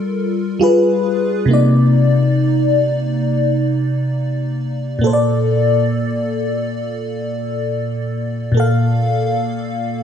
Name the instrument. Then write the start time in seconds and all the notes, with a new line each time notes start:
fm electric piano
Already playing: G3 F4 A4 A#4
0.59 G3 F4 G#4 B4
1.46 C3 A#3
1.51 D#4 D5
4.99 A#2 A#3
5.04 A4 C5
5.13 D5
8.52 A#2 A#3
8.57 A4 F5